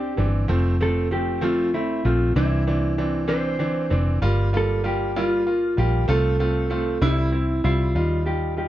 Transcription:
Already playing: fingered electric bass C2, upright piano C4 D4, clean electric guitar G4
0.17 fingered electric bass G1, upright piano E3 C4 D4
0.48 fingered electric bass F1, upright piano F3 A3 C4
0.80 upright piano F3 A3 C4, clean electric guitar A4
1.11 upright piano F3 A3 C4, clean electric guitar G4
1.41 upright piano F3 A3 C4, clean electric guitar F4
1.74 upright piano A3 C4, clean electric guitar E4
2.05 fingered electric bass A#1, upright piano F3 A3 C4, clean electric guitar F4
2.36 fingered electric bass C2, upright piano E3 C4 D4, clean electric guitar E4
2.67 upright piano E3 C4 D4
2.98 upright piano E3 C4 D4
3.28 upright piano E3 C4 D4, clean electric guitar C5
3.59 upright piano E3 C4 D4
3.90 fingered electric bass F1, upright piano E3 C4 D4
4.22 fingered electric bass G1, upright piano G3 A#3 F4
4.53 upright piano G3 A#3 F4, clean electric guitar A4
4.84 upright piano G3 A#3 F4, clean electric guitar G4
5.16 upright piano G3 A#3 F4, clean electric guitar F4
5.46 upright piano A#3 F4
5.77 fingered electric bass A#1, upright piano G3 A#3 F4, clean electric guitar G4
6.08 fingered electric bass C2, upright piano A3 C4 F4, clean electric guitar A4
6.39 upright piano A3 C4 F4
6.70 upright piano A3 C4 F4
7.02 fingered electric bass C2, upright piano G3 C4 E4, clean electric guitar E4
7.32 upright piano C4 E4
7.64 fingered electric bass C2, upright piano G3 C4 E4, clean electric guitar F4
7.95 fingered electric bass D#2, upright piano G3 D#4 F4
8.25 upright piano G3 D#4 F4, clean electric guitar G4
8.57 upright piano G3 D#4 F4, clean electric guitar G4

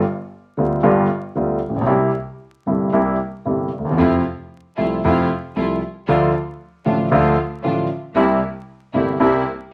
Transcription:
0.57 upright bass D2, grand piano D2 D3 G3 B3 F4
0.83 upright bass G1, grand piano G1 G2 D3 G3 B3 F4
1.35 upright bass D2, grand piano D2 D3 G3 B3 F4
1.68 upright bass A1, grand piano A1
1.74 upright bass A#1, grand piano A#1
1.81 upright bass B1, grand piano B1
1.86 upright bass C2, grand piano C2 C3 G3 A#3 E4
2.66 upright bass G1, grand piano G1 G2 C3 G3 A#3 E4
2.92 upright bass C2, grand piano C2 C3 G3 A#3 E4
3.45 upright bass G1, grand piano G1 G2 C3 G3 A#3 E4
3.78 grand piano D2, upright bass D2
3.85 grand piano D#2, upright bass D#2
3.91 grand piano E2, upright bass E2
3.97 grand piano F2 C3 F3 A3 E4, upright bass F2, string section A3 E4 F4
4.76 grand piano C2 C3 F3 A3 E4, upright bass C2, string section A3 E4 F4
5.03 upright bass F2, grand piano F2 C3 F3 A3 E4, string section A3 E4 F4
5.55 upright bass C2, grand piano C2 C3 F3 A3 E4, string section A3 E4 F4
6.07 upright bass D2, grand piano D2 D3 F3 A3 F4, string section A3 D4 F4
6.85 upright bass A1, grand piano A1 A2 D3 F3 A3 F4, string section A3 D4 F4
7.11 grand piano D2 D3 F3 A3 F4, upright bass D2, string section A3 D4 F4
7.63 upright bass A1, grand piano A1 A2 D3 F3 A3 F4, string section A3 D4 F4
8.15 upright bass C2, grand piano C2 C3 G3 A#3 E4, string section A#3 C4 E4
8.93 upright bass G1, grand piano G1 G2 C3 G3 A#3 E4, string section A#3 C4 E4
9.19 upright bass C2, grand piano C2 C3 G3 A#3 E4, string section A#3 C4 E4

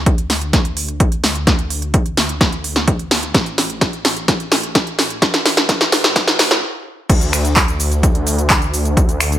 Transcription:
Already playing: detuned saw bass D2
0.06 kick, closed hi-hat
0.18 closed hi-hat
0.30 snare, open hi-hat
0.41 closed hi-hat
0.53 kick, snare, closed hi-hat
0.65 closed hi-hat
0.77 open hi-hat
0.88 closed hi-hat
1.00 kick, closed hi-hat
1.12 closed hi-hat
1.24 snare, open hi-hat
1.35 closed hi-hat
1.47 kick, snare, closed hi-hat
1.59 closed hi-hat
1.70 open hi-hat
1.82 closed hi-hat
1.94 kick, closed hi-hat
2.06 closed hi-hat
2.17 snare, open hi-hat
2.29 closed hi-hat
2.41 kick, snare, closed hi-hat
2.52 closed hi-hat
2.64 open hi-hat
2.76 snare, closed hi-hat
2.88 kick, closed hi-hat
2.99 closed hi-hat
3.11 snare, open hi-hat
3.23 closed hi-hat
3.34 detuned saw bass A1, kick, snare, closed hi-hat
3.46 closed hi-hat
3.58 snare, open hi-hat
3.70 closed hi-hat
3.81 kick, snare, closed hi-hat
3.93 closed hi-hat
4.05 snare, open hi-hat
4.17 closed hi-hat
4.28 kick, snare, closed hi-hat
4.40 closed hi-hat
4.52 snare, open hi-hat
4.63 closed hi-hat
4.75 kick, snare, closed hi-hat
4.87 closed hi-hat
4.99 snare, open hi-hat
5.10 closed hi-hat
5.22 kick, snare, closed hi-hat
5.34 snare, closed hi-hat
5.46 snare, open hi-hat
5.57 snare, closed hi-hat
5.69 kick, snare, closed hi-hat
5.81 snare, closed hi-hat
5.92 snare, open hi-hat
6.04 snare, closed hi-hat
6.16 kick, snare, closed hi-hat
6.28 snare, closed hi-hat
6.39 snare, open hi-hat
6.51 snare, closed hi-hat
7.09 detuned saw bass D2, kick, closed hi-hat, crash, shaker
7.21 closed hi-hat, shaker
7.33 finger snap, open hi-hat, shaker
7.45 closed hi-hat, shaker
7.56 kick, clap, closed hi-hat, shaker
7.68 closed hi-hat, shaker
7.80 open hi-hat, shaker
7.92 closed hi-hat, shaker
8.03 kick, closed hi-hat, shaker
8.15 closed hi-hat
8.27 open hi-hat, shaker
8.38 closed hi-hat, shaker
8.50 kick, clap, closed hi-hat, shaker
8.62 closed hi-hat, shaker
8.74 open hi-hat, shaker
8.85 closed hi-hat, shaker
8.97 kick, closed hi-hat, shaker
9.09 closed hi-hat, shaker
9.20 finger snap, open hi-hat, shaker
9.32 closed hi-hat, shaker

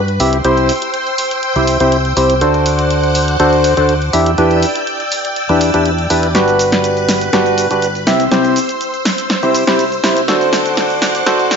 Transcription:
Already playing: fingered electric bass G2, string machine B4 F#6
0.08 closed hi-hat
0.20 fingered electric bass C2, synth stab C4 E4 G4 E5, string machine C5 G5 E6, open hi-hat
0.33 closed hi-hat
0.44 fingered electric bass C2, synth stab C4 E4 G4 C5, closed hi-hat
0.57 closed hi-hat
0.69 open hi-hat
0.82 closed hi-hat
0.94 closed hi-hat
1.07 closed hi-hat
1.18 open hi-hat
1.31 closed hi-hat
1.43 closed hi-hat
1.56 fingered electric bass C2, synth stab C4 E4 G4 C5, closed hi-hat
1.67 open hi-hat
1.80 fingered electric bass C2, synth stab C4 E4 G4 C5, closed hi-hat
1.92 closed hi-hat
2.05 closed hi-hat
2.17 fingered electric bass C2, synth stab C4 E4 G4 C5, open hi-hat
2.30 closed hi-hat
2.41 fingered electric bass D2, synth stab D4 F#4 A4 C5, string machine C5 F#5 D6, closed hi-hat
2.54 closed hi-hat
2.66 open hi-hat
2.79 closed hi-hat
2.91 closed hi-hat
3.03 closed hi-hat
3.15 open hi-hat
3.28 closed hi-hat
3.40 fingered electric bass D2, synth stab D4 F#4 A4 C5, closed hi-hat
3.53 closed hi-hat
3.64 open hi-hat
3.77 fingered electric bass D2, synth stab D4 F#4 A4 C5, closed hi-hat
3.89 closed hi-hat
4.02 closed hi-hat
4.13 fingered electric bass E2, synth stab D4 E4 G4 E5, string machine D5 G5 E6, open hi-hat
4.26 closed hi-hat
4.38 fingered electric bass E2, synth stab D4 E4 G4 B4, closed hi-hat
4.51 closed hi-hat
4.63 open hi-hat
4.75 closed hi-hat
4.87 closed hi-hat
5.00 closed hi-hat
5.12 open hi-hat
5.25 closed hi-hat
5.36 closed hi-hat
5.49 fingered electric bass E2, synth stab D4 E4 G4 B4, closed hi-hat
5.61 open hi-hat
5.74 fingered electric bass E2, synth stab D4 E4 G4 B4, closed hi-hat
5.86 closed hi-hat
5.98 closed hi-hat
6.10 fingered electric bass E2, synth stab D4 E4 G4 B4, open hi-hat
6.23 closed hi-hat
6.35 fingered electric bass G1, synth stab D4 F#4 G4 B4, string machine B4 F#6, snare, closed hi-hat, shaker
6.48 closed hi-hat, shaker
6.59 open hi-hat, shaker
6.72 snare, closed hi-hat, shaker
6.84 closed hi-hat, shaker
6.97 closed hi-hat, shaker
7.09 snare, open hi-hat, shaker
7.21 closed hi-hat, shaker
7.33 fingered electric bass G1, synth stab D4 F#4 G4 B4, snare, closed hi-hat, shaker
7.46 closed hi-hat, shaker
7.58 open hi-hat, shaker
7.71 fingered electric bass G1, synth stab D4 F#4 G4 B4, closed hi-hat, shaker
7.82 closed hi-hat, shaker
7.95 closed hi-hat, shaker
8.07 fingered electric bass C2, synth stab C4 E4 G4 E5, string machine C5 E6, snare, open hi-hat, shaker
8.20 closed hi-hat, shaker
8.31 fingered electric bass C2, synth stab C4 E4 G4 C5, snare, closed hi-hat, shaker
8.44 closed hi-hat, shaker
8.56 open hi-hat, shaker
8.69 closed hi-hat, shaker
8.81 closed hi-hat, shaker
8.94 closed hi-hat, shaker
9.05 snare, open hi-hat, shaker
9.18 closed hi-hat, shaker
9.30 snare, closed hi-hat, shaker
9.43 fingered electric bass C2, synth stab C4 E4 G4 C5, closed hi-hat, shaker
9.55 open hi-hat, shaker
9.67 fingered electric bass C2, synth stab C4 E4 G4 C5, snare, closed hi-hat, shaker
9.79 closed hi-hat, shaker
9.92 closed hi-hat, shaker
10.04 fingered electric bass C2, synth stab C4 E4 G4 C5, snare, open hi-hat, shaker
10.17 closed hi-hat, shaker
10.28 fingered electric bass D2, synth stab D4 F#4 A4 C5, string machine F#5 D6, snare, closed hi-hat, shaker
10.41 closed hi-hat, shaker
10.53 snare, open hi-hat, shaker
10.66 closed hi-hat, shaker
10.77 snare, closed hi-hat, shaker
10.90 closed hi-hat, shaker
11.02 snare, open hi-hat, shaker
11.15 closed hi-hat, shaker
11.26 fingered electric bass D2, synth stab D4 F#4 A4 C5, snare, closed hi-hat, shaker
11.39 closed hi-hat, shaker
11.51 snare, open hi-hat, shaker

